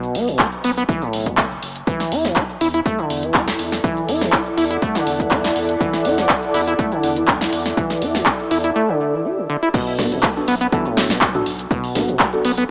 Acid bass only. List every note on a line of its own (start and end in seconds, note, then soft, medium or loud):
0.00 0.17 B2 medium
0.15 0.30 B3 medium
0.28 0.41 B2 medium
0.40 0.47 B3 loud
0.64 0.71 B3 loud
0.77 0.84 B3 medium
0.89 1.03 E3 medium
1.02 1.28 A2 loud
1.27 1.40 B2 medium
1.38 1.45 B3 loud
1.87 2.13 E3 medium
2.12 2.26 E4 medium
2.25 2.38 E3 medium
2.37 2.44 E4 loud
2.61 2.68 E4 loud
2.74 2.80 E4 medium
2.86 3.00 A3 medium
2.99 3.25 D3 loud
3.23 3.36 E3 medium
3.35 3.42 E4 loud
3.84 4.10 E3 medium
4.08 4.23 E4 medium
4.21 4.34 E3 medium
4.33 4.40 E4 loud
4.57 4.65 E4 loud
4.71 4.77 E4 medium
4.82 4.97 A3 medium
4.95 5.21 D3 loud
5.20 5.33 E3 medium
5.31 5.39 E4 loud
5.80 6.07 E3 medium
6.05 6.20 E4 medium
6.18 6.31 E3 medium
6.30 6.37 E4 loud
6.54 6.62 E4 medium
6.68 6.74 E4 medium
6.79 6.94 A3 medium
6.92 7.18 D3 loud
7.17 7.30 E3 medium
7.28 7.35 E4 loud
7.77 8.04 E3 medium
8.02 8.17 E4 medium
8.15 8.28 E3 medium
8.27 8.34 E4 loud
8.51 8.58 E4 loud
8.64 8.71 E4 medium
8.76 8.90 A3 medium
8.89 9.15 D3 loud
9.13 9.26 E3 medium
9.25 9.39 G4 medium
9.38 9.47 D3 loud
9.49 9.57 D3 medium
9.63 9.69 E4 medium
9.74 10.00 B2 medium
9.99 10.13 B3 medium
10.12 10.25 B2 medium
10.23 10.30 B3 loud
10.48 10.55 B3 loud
10.61 10.67 B3 medium
10.73 10.87 E3 medium
10.86 11.12 A2 loud
11.10 11.23 B2 medium
11.22 11.29 B3 loud
11.71 11.97 B2 medium
11.96 12.10 B3 medium
12.09 12.22 B2 medium
12.20 12.27 B3 loud
12.45 12.52 B3 loud
12.58 12.64 B3 medium